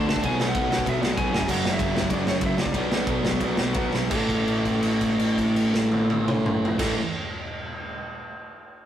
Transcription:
Already playing: D3 A3 D4
0.07 C#2 D3 A3 D4 A5, snare
0.16 kick
0.23 B1 B2 F#3 B3 G#5, kick, ride
0.39 B1 B2 F#3 B3, snare
0.48 F#5
0.55 B1 B2 F#3 B3, kick, ride
0.70 B1 B2 F#3 B3, snare
0.78 kick
0.86 B1 B2 F#3 B3 E5, kick, ride
1.01 B1 B2 F#3 B3 D5, snare
1.17 B1 B2 F#3 B3 G#5, kick, ride
1.32 F#1 F#2 C#3 F#3 G#5, snare
1.41 kick
1.47 F#1 F#2 C#3 F#3 F#5, kick, crash
1.63 F#1 F#2 C#3 F#3, snare
1.73 E5
1.78 F#1 F#2 C#3 F#3, kick, ride
1.94 F#1 F#2 C#3 F#3, snare
2.02 kick
2.10 F#1 F#2 C#3 F#3 D5, kick, ride
2.26 F#1 F#2 C#3 F#3 C#5, snare
2.41 F#1 F#2 C#3 F#3, kick, ride
2.46 E5
2.57 C#2 F#2 C#3 F#3, snare
2.62 D5, kick
2.74 B1 B2 F#3 B3, kick, ride
2.91 B1 B2 F#3 B3, snare
3.06 B1 B2 F#3 B3, kick, ride
3.23 B1 B2 F#3 B3, snare
3.32 kick
3.40 B1 B2 F#3 B3, kick, ride
3.57 B1 B2 F#3 B3, snare
3.74 B1 B2 F#3 B3, kick, ride
3.93 B1 B2 F#3 B3, snare
4.10 A1 A2 E3 A4, kick, crash
4.14 A3
4.29 kick, crash
4.48 crash
4.65 kick, crash
4.83 crash
5.01 kick, crash
5.20 crash
5.38 kick, crash
5.56 crash
5.74 snare
5.92 high tom
6.10 high tom
6.28 mid tom
6.46 mid tom
6.65 floor tom
6.79 A1 A2 E3 A3 A4, kick, snare, crash

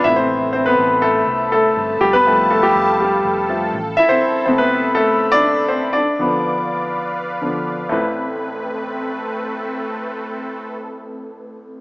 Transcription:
0.04 A1 C3 A3 B3 E4 A4 E5 A5 B5
0.16 C4 C5
0.53 C4 C5
0.66 B3 B4
0.79 A1
1.02 A3 A4
1.27 C2
1.52 A3 A4
1.77 G1
2.00 F1 G3 G4 A4 F5 G5
2.13 B3 B4
2.26 F3 G3 A3
2.50 A3 A4
2.63 G3 G4
2.75 F1
3.00 G3 G4
3.25 F1
3.49 F3 G3 A3
3.73 A1 E5 B5
3.97 E4 E5
4.09 C4 C5
4.46 C3 A3 B3 C4 C5
4.58 B3 B4
4.95 A3 A4
5.32 D4 D5
5.68 C4 C5
5.93 D4 B4 D5 F5 D6
6.19 D3 F3 B3
7.42 D3 F3 B3
7.89 A1 A3 C4 E4 A4 B4
7.93 B4

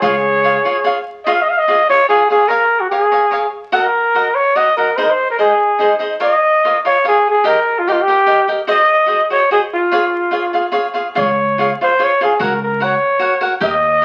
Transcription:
0.00 C#2 F4 G#4 C#5 F5
0.44 F4 G#4 C#5 F5
0.65 F4 G#4 C#5 F5
0.84 F4 G#4 C#5 F5
1.25 F4 G#4 C#5 D#5 F5
1.33 F5
1.42 D#5
1.50 F5
1.58 D#5
1.68 F4 G#4 C#5 F5
1.89 F4 G#4 C#5 F5
2.09 F4 G#4 C#5 F5
2.30 F4 G#4 C#5 F5
2.48 A#4 C#5 F5 G#5
2.80 F#4
2.90 G#4 A#4 C#5 F5 G#5
3.12 A#4 C#5 F5 G#5
3.31 A#4 C#5 F5 G#5
3.72 F#4 A#4 D#5 F#5
4.15 F#4 A#4 D#5 F#5
4.35 C#5
4.56 F#4 A#4 D#5 F#5
4.77 F#4 A#4 D#5 F#5
4.97 D#4 G#4 C5 D#5
5.03 A#4
5.10 C5
5.30 A#4
5.39 D#4 G#4 C5 D#5
5.79 D#4 G#4 C5 D#5
5.99 D#4 G#4 C5 D#5
6.20 F4 A#4 C#5 D#5 F5
6.65 F4 A#4 C#5 F5
6.85 F4 A#4 C#5 F5
7.04 F4 G#4 A#4 C#5 F5
7.30 G#4
7.44 G4 A#4 D#5 G5
7.79 F4
7.87 G4 A#4 D#5 G5
7.92 F4
8.02 G4
8.08 G4 A#4 D#5 G5
8.26 G4 A#4 D#5 G5
8.48 G4 A#4 D#5 G5
8.67 F#4 G#4 C5 D#5
9.06 F#4 G#4 C5 D#5
9.30 F#4 G#4 C5 C#5 D#5
9.51 F#4 G#4 C5 D#5
9.73 F4
9.91 F4 G#4 C#5 F5
10.31 F4 G#4 C#5 F5
10.53 F4 G#4 C#5 F5
10.72 F4 G#4 C#5 F5
10.94 F4 G#4 C#5 F5
11.15 C#2 F4 G#4 C#5 F5
11.58 F4 G#4 C#5 F5
11.81 F4 G#4 C5 C#5 F5
11.99 F4 G#4 C#5 F5
12.04 C#5
12.21 F4 G#4 C#5 F5
12.40 C#2 F#4 A#4 C#5 F#5
12.62 A#4
12.80 F#4 A#4 C#5 F#5
13.19 F#4 A#4 C#5 F#5
13.41 F#4 A#4 C#5 F#5
13.60 D#2 G4 A#4 D#5 G5
14.02 G4 A#4

